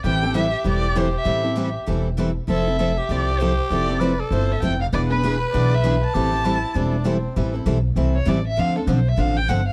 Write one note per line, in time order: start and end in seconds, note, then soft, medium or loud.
0.04 0.53 A1 medium
0.04 0.23 E3 medium
0.04 0.23 G3 medium
0.04 0.23 C4 medium
0.04 0.23 E4 medium
0.04 2.32 G4 loud
0.04 0.22 A4 medium
0.04 0.34 G5 loud
0.23 0.33 C4 soft
0.23 0.34 E4 soft
0.23 0.34 A4 medium
0.34 0.46 E3 medium
0.34 0.46 G3 medium
0.34 0.46 C4 medium
0.34 0.46 E4 medium
0.34 0.46 A4 medium
0.34 0.65 E5 medium
0.64 1.14 E1 medium
0.64 0.85 E3 medium
0.64 0.85 G3 medium
0.64 0.85 C4 medium
0.64 0.85 E4 medium
0.64 0.85 A4 medium
0.69 1.00 D5 medium
0.95 1.07 E3 medium
0.95 1.07 G3 medium
0.95 1.07 C4 medium
0.95 1.07 E4 medium
0.95 1.07 A4 medium
0.95 1.16 C5 medium
1.18 1.73 E5 medium
1.24 1.75 A1 medium
1.24 1.43 E3 medium
1.24 1.44 G3 medium
1.24 1.44 C4 medium
1.24 1.43 E4 medium
1.24 1.42 A4 medium
1.43 1.56 C4 soft
1.43 1.56 E4 soft
1.43 1.56 A4 soft
1.56 1.68 E3 medium
1.56 1.68 G3 medium
1.56 1.68 C4 medium
1.56 1.68 E4 medium
1.56 1.68 A4 medium
1.87 2.37 E1 medium
1.87 2.07 E3 medium
1.87 2.07 G3 medium
1.87 2.08 C4 medium
1.87 2.08 E4 medium
1.87 2.08 A4 medium
2.18 2.29 E3 medium
2.18 2.29 G3 medium
2.18 2.30 C4 medium
2.18 2.30 E4 medium
2.18 2.30 A4 loud
2.48 2.97 F1 medium
2.48 2.67 F3 medium
2.48 2.67 C4 medium
2.48 2.66 E4 medium
2.48 2.78 A4 medium
2.48 2.66 A4 medium
2.48 3.13 E5 medium
2.67 2.79 C4 soft
2.67 2.79 E4 soft
2.67 2.79 A4 medium
2.79 2.90 F3 medium
2.79 2.91 C4 medium
2.79 2.91 E4 medium
2.79 2.99 A4 medium
2.79 2.91 A4 medium
2.98 4.02 G4 loud
3.09 3.58 C2 medium
3.09 3.30 F3 medium
3.09 3.30 C4 medium
3.09 3.31 E4 medium
3.09 3.31 A4 medium
3.09 3.41 D5 medium
3.39 3.52 F3 medium
3.39 3.52 C4 medium
3.39 3.52 E4 medium
3.39 3.52 A4 medium
3.39 3.70 C5 medium
3.70 4.19 F1 medium
3.70 3.88 F3 medium
3.70 3.88 C4 medium
3.70 3.88 E4 medium
3.70 3.87 A4 medium
3.70 4.17 D5 medium
3.88 3.99 C4 soft
3.88 4.00 E4 soft
3.88 4.00 A4 medium
4.00 4.11 F3 medium
4.00 4.12 C4 medium
4.00 4.12 E4 medium
4.00 4.12 A4 medium
4.00 4.22 B4 medium
4.20 4.67 A4 loud
4.31 4.57 G1 medium
4.31 4.51 F3 medium
4.31 4.52 C4 medium
4.31 4.52 E4 medium
4.31 4.52 A4 medium
4.31 4.53 C5 medium
4.52 4.62 E5 medium
4.62 4.88 F1 medium
4.62 4.73 F3 medium
4.62 4.73 C4 medium
4.62 4.73 E4 medium
4.62 4.73 A4 medium
4.62 4.80 G5 medium
4.81 4.87 F5 medium
4.92 5.41 E1 medium
4.92 5.10 E3 medium
4.92 5.10 B3 medium
4.92 5.10 D4 medium
4.92 5.08 G#4 medium
4.92 5.13 B4 medium
4.92 6.16 B4 loud
4.92 5.02 D5 medium
5.10 5.22 B3 soft
5.10 5.23 D4 soft
5.10 5.22 G#4 soft
5.10 5.50 B4 medium
5.24 5.34 E3 medium
5.24 5.34 B3 medium
5.24 5.34 D4 medium
5.24 5.35 G#4 loud
5.24 5.35 B4 medium
5.53 6.03 B1 medium
5.53 5.73 E3 medium
5.53 5.73 B3 medium
5.53 5.73 D4 medium
5.53 5.74 G#4 medium
5.53 5.74 B4 medium
5.53 5.76 D5 medium
5.75 5.95 E5 medium
5.84 5.95 E3 medium
5.84 5.95 B3 medium
5.84 5.95 D4 medium
5.84 5.95 G#4 medium
5.84 5.95 B4 medium
6.04 7.03 A5 loud
6.14 6.63 A1 medium
6.14 6.32 E3 medium
6.14 6.32 G3 medium
6.14 6.32 C4 medium
6.14 6.32 E4 medium
6.14 6.47 G4 loud
6.14 6.31 A4 medium
6.32 6.44 C4 soft
6.32 6.44 E4 soft
6.32 6.44 A4 medium
6.45 6.56 E3 medium
6.45 6.56 G3 medium
6.45 6.56 C4 medium
6.45 6.77 E4 medium
6.45 6.56 E4 medium
6.45 6.56 A4 medium
6.74 7.24 E1 medium
6.74 6.94 E3 medium
6.74 6.95 G3 medium
6.74 6.95 C4 medium
6.74 7.09 D4 medium
6.74 6.95 E4 medium
6.74 6.95 A4 medium
7.04 7.16 E3 medium
7.04 7.16 G3 medium
7.04 7.16 C4 medium
7.04 7.37 C4 medium
7.04 7.16 E4 medium
7.04 7.16 A4 medium
7.36 7.65 A1 medium
7.36 7.54 E3 medium
7.36 7.54 G3 medium
7.36 7.54 C4 medium
7.36 7.53 E4 medium
7.36 7.52 A4 medium
7.54 7.65 C4 soft
7.54 7.66 E4 soft
7.54 7.66 A4 medium
7.66 7.95 B1 medium
7.66 7.77 E3 medium
7.66 7.77 G3 medium
7.66 7.77 C4 medium
7.66 7.77 E4 medium
7.66 7.78 A4 medium
7.96 8.26 C2 medium
7.96 8.16 E3 medium
7.96 8.16 G3 medium
7.96 8.16 C4 medium
7.96 8.16 E4 medium
7.96 8.17 A4 medium
8.15 8.30 C#5 medium
8.27 8.56 A1 medium
8.27 8.38 E3 medium
8.27 8.38 G3 medium
8.27 8.38 C4 medium
8.27 8.38 E4 medium
8.27 8.38 A4 medium
8.27 8.46 D5 medium
8.48 8.61 E5 medium
8.57 8.86 D2 medium
8.57 8.75 D3 medium
8.57 8.76 F3 medium
8.57 8.76 C4 medium
8.57 8.76 D4 medium
8.57 8.74 A4 medium
8.57 8.77 F5 loud
8.76 8.87 C4 soft
8.76 8.88 D4 medium
8.76 8.87 A4 medium
8.76 8.92 A4 soft
8.87 9.17 B1 medium
8.87 8.98 D3 medium
8.87 8.99 F3 medium
8.87 8.99 C4 medium
8.87 8.99 D4 medium
8.87 8.99 A4 medium
8.87 9.10 C5 medium
9.09 9.22 E5 medium
9.18 9.47 A1 medium
9.18 9.38 D3 medium
9.18 9.38 F3 medium
9.18 9.38 C4 medium
9.18 9.38 D4 medium
9.18 9.38 A4 medium
9.18 9.38 F5 medium
9.37 9.51 G5 loud
9.49 9.73 G1 medium
9.49 9.59 D3 medium
9.49 9.60 F3 medium
9.49 9.60 C4 medium
9.49 9.60 D4 medium
9.49 9.60 A4 medium
9.49 9.67 F#5 medium
9.68 9.73 F5 medium